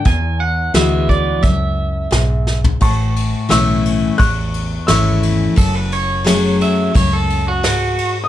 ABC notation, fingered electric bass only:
X:1
M:4/4
L:1/8
Q:1/4=87
K:A
V:1 name="Fingered electric bass" clef=bass
E,,2 D,,2 C,,2 B,,,2 | A,,,2 B,,,2 A,,,2 G,,,2 | F,,,4 C,,4 |]